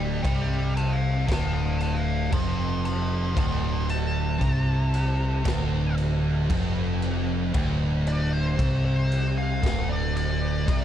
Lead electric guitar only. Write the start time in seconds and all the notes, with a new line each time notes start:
Already playing: D5 G5
0.25 D5 G5
0.77 F5 A5
1.29 F5 A5
1.81 F5 A5
2.32 A5 C6
2.85 A5 C6
3.39 A5 C6
3.90 A5
8.08 D5
8.33 C5
8.85 C5
9.38 F5
9.89 D5
10.17 D5